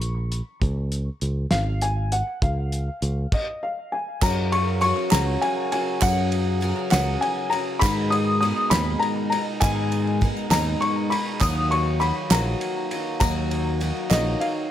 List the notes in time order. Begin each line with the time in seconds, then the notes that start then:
Already playing: A#1 C#6
0.02 closed hi-hat
0.32 closed hi-hat
0.62 C#2, kick, closed hi-hat
0.92 closed hi-hat
1.21 C#2, closed hi-hat
1.51 G#1 F5, snare, closed hi-hat
1.81 G#5, closed hi-hat
2.12 F#5, closed hi-hat
2.42 C#2 F5, kick, closed hi-hat
2.72 closed hi-hat
3.02 C#2, closed hi-hat
3.32 D#5, kick, crash
3.63 F5
3.92 G#5
4.21 F#2 C#3 F#3 C#4 F#4 A#4 A#5, kick, clap, crash, tambourine
4.52 C#6, ride
4.81 F#3 C#4 F#4 A#4 C#6, ride
4.97 clap
5.11 C#2 F#3 C#4 F#4 A#4 A#5, snare, clap, ride, tambourine
5.42 G#5, ride
5.72 C#4 F#4 A#4 G#5, ride
6.01 F#2 F#3 C#4 F#4 G#4 A#4 F#5, kick, clap, ride, tambourine
6.32 ride
6.61 F#3 C#4 F#4 A#4, ride
6.77 clap
6.90 C#2 F#3 C#4 F#4 A#4 F#5, snare, clap, ride, tambourine
7.21 G#5, ride
7.50 F#4 A#4 A#5, ride
7.54 C#4
7.79 G#2 B2 D#3 G#3 D#4 B5, kick, clap, ride, tambourine
7.84 G#3 B3 A#4
8.10 D#6, ride
8.41 G#3 B3 D#4 D#6, ride
8.45 A#4
8.57 clap
8.70 D#2 G#2 D#3 G#3 B3 D#4 A#4 B5, snare, clap, ride, tambourine
8.99 A#5, ride
9.30 D#4 A#4 A#5, ride
9.34 G#3 B3
9.60 G#2 D#3 G#3 B3 D#4 G#5, kick, clap, ride, tambourine
9.65 A#4
9.92 ride, tambourine
10.07 clap
10.21 G#3 B3 D#4 A#4, kick, ride, tambourine
10.37 tambourine
10.50 D#2 G#2 D#3 G#3 B3 D#4 A#4 A#5, snare, clap, ride, tambourine
10.66 clap
10.81 C#6, clap, ride
11.10 G#3 B3 D#4 A#4 B5, ride
11.40 D#2 D#3 F#3 A#3 D#4 F#4 A#4 D#6, kick, clap, ride, tambourine
11.71 C#6, ride
12.00 F#3 D#4 F#4 A#4 B5, ride
12.30 A#1 D#3 F#3 D#4 F#4 A#4 A#5, snare, clap, ride, tambourine
12.61 ride
12.91 D#4 F#4 A#4, ride
13.20 D#2 D#3 F#3 D#4 F#4 A#4 A#5, kick, clap, ride, tambourine
13.51 ride
13.80 F#3 D#4 F#4 A#4, ride
13.96 clap
14.10 A#1 D#3 F#3 D#4 F#4 A#4 D#5, snare, clap, ride, tambourine
14.40 F5, ride